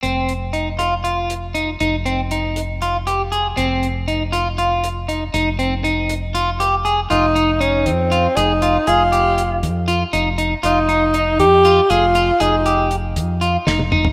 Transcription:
<<
  \new Staff \with { instrumentName = "Clean electric guitar" } { \time 7/8 \key f \minor \tempo 4 = 119 c'4 ees'8 f'8 f'4 ees'8 | ees'8 c'8 ees'4 f'8 g'8 aes'8 | c'4 ees'8 f'8 f'4 ees'8 | ees'8 c'8 ees'4 f'8 g'8 aes'8 |
f'8 ees'8 ees'4 f'8 aes'8 f'8 | aes'8 g'4 r8 f'8 ees'8 ees'8 | f'8 ees'8 ees'4 f'8 aes'8 f'8 | aes'8 g'4 r8 f'8 ees'8 ees'8 | }
  \new Staff \with { instrumentName = "Tenor saxophone" } { \time 7/8 \key f \minor r2. r8 | r2. r8 | r2. r8 | r2. r8 |
ees'4 des'8 c'4 ees'4 | f'4. r2 | ees'4. g'4 f'4 | ees'4 r2 r8 | }
  \new Staff \with { instrumentName = "Fingered electric bass" } { \clef bass \time 7/8 \key f \minor f,,2.~ f,,8 | f,,2.~ f,,8 | f,,2.~ f,,8 | f,,2.~ f,,8 |
f,,4. f,4 f,,4 | f,,4. f,4 f,,4 | f,,4. f,4 f,,4 | f,,4. f,4 f,,4 | }
  \new DrumStaff \with { instrumentName = "Drums" } \drummode { \time 7/8 hh8 hh8 hh8 hh8 hh8 hh8 hh8 | hh8 hh8 hh8 hh8 hh8 hh8 hh8 | hh8 hh8 hh8 hh8 hh8 hh8 hh8 | hh8 hh8 hh8 hh8 hh8 hh8 hh8 |
hh8 hh8 hh8 hh8 hh8 hh8 hh8 | hh8 hh8 hh8 hh8 hh8 hh8 hh8 | hh8 hh8 hh8 hh8 hh8 hh8 hh8 | hh8 hh8 hh8 hh8 hh8 sn16 tommh16 toml16 tomfh16 | }
>>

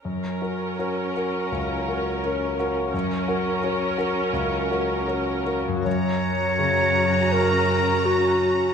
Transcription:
<<
  \new Staff \with { instrumentName = "Violin section" } { \time 4/4 \key fis \dorian \tempo 4 = 82 r1 | r1 | ais''1 | }
  \new Staff \with { instrumentName = "Clarinet" } { \time 4/4 \key fis \dorian r1 | r1 | cis''2 ais'4 fis'4 | }
  \new Staff \with { instrumentName = "Grand piano" } { \time 4/4 \key fis \dorian fis,8 <fis' ais'>8 <cis' fis' ais'>8 <fis' ais'>8 cis,8 <fis' ais'>8 <cis' fis' ais'>8 <fis' ais'>8 | fis,8 <fis' ais'>8 <cis' fis' ais'>8 <fis' ais'>8 cis,8 <fis' ais'>8 <cis' fis' ais'>8 <fis' ais'>8 | fis,4 cis2. | }
  \new Staff \with { instrumentName = "Harp" } { \time 4/4 \key fis \dorian r1 | r1 | <fis, cis' fis' ais'>1 | }
  \new Staff \with { instrumentName = "Viola section" } { \time 4/4 \key fis \dorian <cis' ais'>1 | <cis' ais'>2.~ <cis' ais'>8 r8 | <cis' fis'>1 | }
  \new Staff \with { instrumentName = "Cello section" } { \clef bass \time 4/4 \key fis \dorian r1 | r1 | fis,1 | }
>>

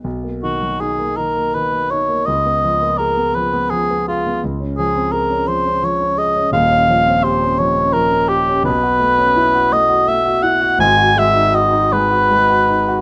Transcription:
<<
  \new Staff \with { instrumentName = "Cor anglais" } { \time 6/8 \key b \major \tempo 4. = 56 r8 fis'8 gis'8 ais'8 b'8 cis''8 | dis''4 ais'8 b'8 gis'8 eis'8 | r8 gis'8 ais'8 bis'8 cis''8 dis''8 | eis''4 bis'8 cis''8 ais'8 g'8 |
\key gis \phrygian b'4. dis''8 e''8 fis''8 | gis''8 e''8 dis''8 b'4. | }
  \new Staff \with { instrumentName = "Grand piano" } { \time 6/8 \key b \major b,,16 ais16 dis16 fis16 dis'16 ais16 dis16 ais16 dis16 ais16 dis'16 ais16 | cis,16 b16 eis16 ais16 gis'16 b16 eis16 b16 eis16 b16 gis'16 b16 | cis,16 cis'16 eis16 bis16 gis'16 cis'16 eis16 cis'16 eis16 cis'16 gis'16 cis'16 | <dis,, dis,>16 cis'16 eis16 bis16 g'16 cis'16 eis16 cis'16 eis16 cis'16 g'16 cis'16 |
\key gis \phrygian <b,, b,>16 fis'16 a16 cis'16 e'16 fis'16 a16 fis'16 a16 fis'16 e'16 fis'16 | <gis,, gis,>16 fis'16 gis16 dis'16 fis'16 dis'16 gis16 fis'16 gis16 fis'16 dis'16 fis'16 | }
>>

